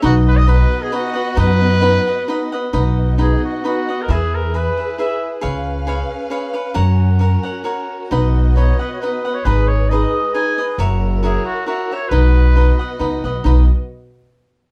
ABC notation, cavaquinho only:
X:1
M:3/4
L:1/8
Q:1/4=135
K:B
V:1 name="Cavaquinho"
[DBdf]2 [DBdf]2 [DBdf] [Bdf] | [DBdf]2 [DBdf] [Bdf] [DBdf] [Bdf] | [DBdf]2 [DBdf]2 [DBdf] [Bdf] | [EGBe]2 [EGBe] [GBe] [EGBe]2 |
[GBc^e]2 [GBce]2 [GBce] [Bce] | [FAcf]2 [FAcf] [Acf] [FAcf]2 | [DBdf]2 [DBdf] [Bdf] [DBdf] [Bdf] | [DGBd]2 [DGBd]2 [DGBd] [GBd] |
[FAce]2 [FAce]2 [FAce] [Ace] | [DBdf]2 [DBdf] [Bdf] [DBdf] [Bdf] | [DBdf] z4 z |]